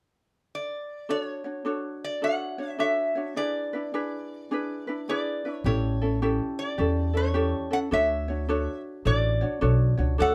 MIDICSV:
0, 0, Header, 1, 4, 480
1, 0, Start_track
1, 0, Key_signature, 2, "major"
1, 0, Tempo, 568182
1, 924, Time_signature, 4, 2, 24, 8
1, 8742, End_track
2, 0, Start_track
2, 0, Title_t, "Resonator guitar played with a steel bar"
2, 0, Program_c, 0, 25
2, 464, Note_on_c, 0, 74, 65
2, 933, Note_off_c, 0, 74, 0
2, 933, Note_on_c, 0, 74, 72
2, 1034, Note_off_c, 0, 74, 0
2, 1034, Note_on_c, 0, 73, 72
2, 1724, Note_off_c, 0, 73, 0
2, 1727, Note_on_c, 0, 74, 72
2, 1891, Note_on_c, 0, 78, 82
2, 1899, Note_off_c, 0, 74, 0
2, 2271, Note_off_c, 0, 78, 0
2, 2271, Note_on_c, 0, 76, 82
2, 2362, Note_off_c, 0, 76, 0
2, 2365, Note_on_c, 0, 76, 70
2, 2848, Note_on_c, 0, 74, 79
2, 2860, Note_off_c, 0, 76, 0
2, 4294, Note_off_c, 0, 74, 0
2, 4304, Note_on_c, 0, 74, 68
2, 4659, Note_off_c, 0, 74, 0
2, 4659, Note_on_c, 0, 73, 68
2, 4778, Note_off_c, 0, 73, 0
2, 4781, Note_on_c, 0, 73, 60
2, 5221, Note_off_c, 0, 73, 0
2, 5566, Note_on_c, 0, 74, 75
2, 6053, Note_off_c, 0, 74, 0
2, 6057, Note_on_c, 0, 73, 66
2, 6532, Note_on_c, 0, 78, 89
2, 6538, Note_off_c, 0, 73, 0
2, 6576, Note_off_c, 0, 78, 0
2, 6703, Note_on_c, 0, 76, 80
2, 7444, Note_off_c, 0, 76, 0
2, 7660, Note_on_c, 0, 74, 85
2, 8402, Note_off_c, 0, 74, 0
2, 8620, Note_on_c, 0, 69, 67
2, 8631, Note_on_c, 0, 78, 86
2, 8742, Note_off_c, 0, 69, 0
2, 8742, Note_off_c, 0, 78, 0
2, 8742, End_track
3, 0, Start_track
3, 0, Title_t, "Ukulele"
3, 0, Program_c, 1, 24
3, 921, Note_on_c, 1, 69, 54
3, 924, Note_on_c, 1, 62, 59
3, 926, Note_on_c, 1, 66, 50
3, 933, Note_on_c, 1, 73, 71
3, 1208, Note_off_c, 1, 73, 0
3, 1217, Note_off_c, 1, 66, 0
3, 1218, Note_on_c, 1, 73, 42
3, 1223, Note_off_c, 1, 62, 0
3, 1227, Note_on_c, 1, 66, 40
3, 1228, Note_off_c, 1, 69, 0
3, 1234, Note_on_c, 1, 62, 37
3, 1388, Note_off_c, 1, 62, 0
3, 1392, Note_on_c, 1, 69, 52
3, 1393, Note_off_c, 1, 66, 0
3, 1396, Note_off_c, 1, 73, 0
3, 1398, Note_on_c, 1, 62, 66
3, 1403, Note_on_c, 1, 66, 63
3, 1406, Note_on_c, 1, 73, 61
3, 1865, Note_off_c, 1, 69, 0
3, 1875, Note_on_c, 1, 69, 52
3, 1879, Note_off_c, 1, 66, 0
3, 1880, Note_off_c, 1, 62, 0
3, 1883, Note_off_c, 1, 73, 0
3, 1883, Note_on_c, 1, 62, 50
3, 1889, Note_on_c, 1, 66, 57
3, 1893, Note_on_c, 1, 73, 57
3, 2172, Note_off_c, 1, 73, 0
3, 2180, Note_off_c, 1, 66, 0
3, 2182, Note_on_c, 1, 73, 52
3, 2184, Note_off_c, 1, 62, 0
3, 2186, Note_off_c, 1, 69, 0
3, 2191, Note_on_c, 1, 66, 42
3, 2194, Note_on_c, 1, 62, 39
3, 2348, Note_off_c, 1, 62, 0
3, 2350, Note_off_c, 1, 66, 0
3, 2352, Note_off_c, 1, 73, 0
3, 2353, Note_on_c, 1, 69, 62
3, 2358, Note_on_c, 1, 62, 69
3, 2360, Note_on_c, 1, 66, 63
3, 2362, Note_on_c, 1, 73, 70
3, 2654, Note_off_c, 1, 73, 0
3, 2664, Note_on_c, 1, 73, 47
3, 2665, Note_off_c, 1, 69, 0
3, 2666, Note_off_c, 1, 66, 0
3, 2668, Note_off_c, 1, 62, 0
3, 2676, Note_on_c, 1, 66, 39
3, 2682, Note_on_c, 1, 62, 37
3, 2834, Note_off_c, 1, 62, 0
3, 2841, Note_on_c, 1, 68, 57
3, 2842, Note_off_c, 1, 73, 0
3, 2844, Note_on_c, 1, 62, 65
3, 2848, Note_off_c, 1, 66, 0
3, 2852, Note_on_c, 1, 64, 59
3, 2855, Note_on_c, 1, 71, 57
3, 3141, Note_off_c, 1, 71, 0
3, 3150, Note_off_c, 1, 68, 0
3, 3151, Note_off_c, 1, 62, 0
3, 3152, Note_on_c, 1, 71, 52
3, 3153, Note_off_c, 1, 64, 0
3, 3163, Note_on_c, 1, 64, 43
3, 3170, Note_on_c, 1, 62, 39
3, 3318, Note_off_c, 1, 62, 0
3, 3322, Note_off_c, 1, 64, 0
3, 3323, Note_off_c, 1, 71, 0
3, 3327, Note_on_c, 1, 68, 61
3, 3328, Note_on_c, 1, 62, 69
3, 3332, Note_on_c, 1, 64, 62
3, 3333, Note_on_c, 1, 71, 74
3, 3800, Note_off_c, 1, 68, 0
3, 3804, Note_off_c, 1, 62, 0
3, 3810, Note_off_c, 1, 71, 0
3, 3810, Note_on_c, 1, 68, 62
3, 3814, Note_on_c, 1, 62, 63
3, 3820, Note_off_c, 1, 64, 0
3, 3823, Note_on_c, 1, 64, 64
3, 3830, Note_on_c, 1, 71, 65
3, 4106, Note_off_c, 1, 71, 0
3, 4114, Note_off_c, 1, 68, 0
3, 4116, Note_off_c, 1, 62, 0
3, 4116, Note_on_c, 1, 71, 54
3, 4118, Note_off_c, 1, 64, 0
3, 4128, Note_on_c, 1, 64, 51
3, 4132, Note_on_c, 1, 62, 47
3, 4289, Note_off_c, 1, 71, 0
3, 4295, Note_off_c, 1, 64, 0
3, 4297, Note_off_c, 1, 62, 0
3, 4299, Note_on_c, 1, 68, 67
3, 4309, Note_on_c, 1, 64, 73
3, 4310, Note_on_c, 1, 62, 66
3, 4313, Note_on_c, 1, 71, 65
3, 4593, Note_off_c, 1, 71, 0
3, 4599, Note_off_c, 1, 68, 0
3, 4603, Note_off_c, 1, 64, 0
3, 4603, Note_on_c, 1, 71, 46
3, 4604, Note_off_c, 1, 62, 0
3, 4612, Note_on_c, 1, 64, 45
3, 4618, Note_on_c, 1, 62, 34
3, 4772, Note_off_c, 1, 64, 0
3, 4772, Note_off_c, 1, 71, 0
3, 4776, Note_on_c, 1, 67, 61
3, 4779, Note_off_c, 1, 62, 0
3, 4782, Note_on_c, 1, 61, 62
3, 4782, Note_on_c, 1, 64, 69
3, 4786, Note_on_c, 1, 69, 62
3, 5072, Note_off_c, 1, 69, 0
3, 5077, Note_off_c, 1, 67, 0
3, 5080, Note_off_c, 1, 61, 0
3, 5080, Note_off_c, 1, 64, 0
3, 5082, Note_on_c, 1, 69, 49
3, 5090, Note_on_c, 1, 64, 46
3, 5099, Note_on_c, 1, 61, 40
3, 5245, Note_off_c, 1, 61, 0
3, 5249, Note_off_c, 1, 64, 0
3, 5251, Note_off_c, 1, 69, 0
3, 5255, Note_on_c, 1, 61, 67
3, 5255, Note_on_c, 1, 67, 67
3, 5259, Note_on_c, 1, 64, 78
3, 5263, Note_on_c, 1, 69, 69
3, 5715, Note_off_c, 1, 67, 0
3, 5725, Note_off_c, 1, 64, 0
3, 5725, Note_on_c, 1, 67, 56
3, 5732, Note_off_c, 1, 61, 0
3, 5735, Note_on_c, 1, 64, 56
3, 5736, Note_on_c, 1, 61, 59
3, 5741, Note_off_c, 1, 69, 0
3, 5744, Note_on_c, 1, 69, 63
3, 6017, Note_off_c, 1, 69, 0
3, 6026, Note_off_c, 1, 64, 0
3, 6027, Note_on_c, 1, 69, 45
3, 6031, Note_off_c, 1, 61, 0
3, 6031, Note_off_c, 1, 67, 0
3, 6036, Note_on_c, 1, 64, 40
3, 6041, Note_on_c, 1, 61, 44
3, 6192, Note_off_c, 1, 61, 0
3, 6199, Note_off_c, 1, 64, 0
3, 6199, Note_on_c, 1, 67, 61
3, 6202, Note_on_c, 1, 61, 73
3, 6204, Note_off_c, 1, 69, 0
3, 6209, Note_on_c, 1, 64, 72
3, 6214, Note_on_c, 1, 69, 78
3, 6500, Note_off_c, 1, 69, 0
3, 6508, Note_off_c, 1, 67, 0
3, 6509, Note_off_c, 1, 61, 0
3, 6509, Note_off_c, 1, 64, 0
3, 6510, Note_on_c, 1, 69, 48
3, 6519, Note_on_c, 1, 64, 43
3, 6528, Note_on_c, 1, 61, 35
3, 6673, Note_off_c, 1, 69, 0
3, 6684, Note_on_c, 1, 69, 58
3, 6687, Note_off_c, 1, 61, 0
3, 6688, Note_off_c, 1, 64, 0
3, 6690, Note_on_c, 1, 62, 60
3, 6691, Note_on_c, 1, 66, 64
3, 6694, Note_on_c, 1, 73, 66
3, 6986, Note_off_c, 1, 73, 0
3, 6989, Note_off_c, 1, 69, 0
3, 6993, Note_off_c, 1, 62, 0
3, 6993, Note_off_c, 1, 66, 0
3, 6997, Note_on_c, 1, 73, 50
3, 7009, Note_on_c, 1, 66, 39
3, 7013, Note_on_c, 1, 62, 39
3, 7161, Note_off_c, 1, 62, 0
3, 7166, Note_off_c, 1, 66, 0
3, 7168, Note_off_c, 1, 73, 0
3, 7169, Note_on_c, 1, 69, 71
3, 7171, Note_on_c, 1, 62, 72
3, 7176, Note_on_c, 1, 66, 73
3, 7178, Note_on_c, 1, 73, 78
3, 7643, Note_off_c, 1, 69, 0
3, 7647, Note_on_c, 1, 69, 56
3, 7652, Note_off_c, 1, 62, 0
3, 7656, Note_off_c, 1, 66, 0
3, 7656, Note_on_c, 1, 62, 62
3, 7658, Note_off_c, 1, 73, 0
3, 7659, Note_on_c, 1, 66, 58
3, 7661, Note_on_c, 1, 73, 63
3, 7940, Note_off_c, 1, 73, 0
3, 7949, Note_off_c, 1, 66, 0
3, 7950, Note_off_c, 1, 69, 0
3, 7950, Note_on_c, 1, 73, 51
3, 7955, Note_off_c, 1, 62, 0
3, 7959, Note_on_c, 1, 66, 49
3, 7971, Note_on_c, 1, 62, 39
3, 8109, Note_off_c, 1, 62, 0
3, 8112, Note_off_c, 1, 66, 0
3, 8119, Note_off_c, 1, 73, 0
3, 8120, Note_on_c, 1, 62, 71
3, 8120, Note_on_c, 1, 69, 66
3, 8122, Note_on_c, 1, 66, 75
3, 8129, Note_on_c, 1, 73, 71
3, 8416, Note_off_c, 1, 73, 0
3, 8425, Note_off_c, 1, 66, 0
3, 8426, Note_off_c, 1, 62, 0
3, 8426, Note_off_c, 1, 69, 0
3, 8426, Note_on_c, 1, 73, 52
3, 8435, Note_on_c, 1, 66, 46
3, 8447, Note_on_c, 1, 62, 46
3, 8593, Note_off_c, 1, 62, 0
3, 8599, Note_off_c, 1, 66, 0
3, 8601, Note_off_c, 1, 73, 0
3, 8602, Note_on_c, 1, 69, 57
3, 8603, Note_on_c, 1, 62, 64
3, 8610, Note_on_c, 1, 66, 71
3, 8612, Note_on_c, 1, 73, 70
3, 8742, Note_off_c, 1, 62, 0
3, 8742, Note_off_c, 1, 66, 0
3, 8742, Note_off_c, 1, 69, 0
3, 8742, Note_off_c, 1, 73, 0
3, 8742, End_track
4, 0, Start_track
4, 0, Title_t, "Upright bass"
4, 0, Program_c, 2, 32
4, 4767, Note_on_c, 2, 33, 80
4, 5391, Note_off_c, 2, 33, 0
4, 5732, Note_on_c, 2, 40, 82
4, 6353, Note_off_c, 2, 40, 0
4, 6691, Note_on_c, 2, 38, 81
4, 7312, Note_off_c, 2, 38, 0
4, 7649, Note_on_c, 2, 33, 90
4, 7959, Note_off_c, 2, 33, 0
4, 8126, Note_on_c, 2, 35, 81
4, 8399, Note_off_c, 2, 35, 0
4, 8434, Note_on_c, 2, 37, 71
4, 8587, Note_off_c, 2, 37, 0
4, 8616, Note_on_c, 2, 38, 84
4, 8742, Note_off_c, 2, 38, 0
4, 8742, End_track
0, 0, End_of_file